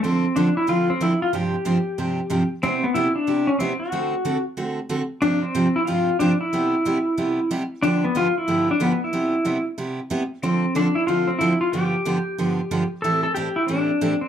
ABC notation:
X:1
M:4/4
L:1/8
Q:"Swing" 1/4=185
K:C
V:1 name="Pedal steel guitar"
C2 D E F C E F | G6- G z | C B, E D2 _D C ^F- | ^F3 z4 z |
D C2 E F2 D E- | E6 z2 | D B, F E2 D B, E- | E3 z4 z |
C2 D E F C E F | G6- G z | A A G E D3 C |]
V:2 name="Steel-string acoustic guitar"
[D,F,CDA] z [D,F,CDA] z [D,F,CDA] z [D,F,CDA] z | [G,,C,F,CDG] z [G,,C,F,CDG] z [G,,C,F,CDG] z [G,,C,F,CDG] z | [C,G,B,EG] z [C,G,B,EG] z [C,G,B,EG] z [C,G,B,EG] z | [D,A,C^FA] z [D,A,CFA] z [D,A,CFA] z [D,A,CFA] z |
[G,,C,F,CDG] z [G,,C,F,CDG] z [G,,C,F,CDG] z [G,,C,F,CDG] z | [C,G,B,EG] z [C,G,B,EG] z [C,G,B,EG] z [C,G,B,EG] z | [G,,D,F,B,DG] z [G,,D,F,B,DG] z [G,,D,F,B,DG] z [G,,D,F,B,DG] z | [C,G,B,EG] z [C,G,B,EG] z [C,G,B,EG] z [C,G,B,EG] z |
[D,F,CDA] z [D,F,CDA] z [D,F,CDA] z [D,F,CDA] z | [G,,D,F,B,DG] z [G,,D,F,B,DG] z [G,,D,F,B,DG] z [G,,D,F,B,DG] z | [A,,E,G,CEA] z [A,,E,G,CEA] z [A,,E,G,CEA] z [A,,E,G,CEA] z |]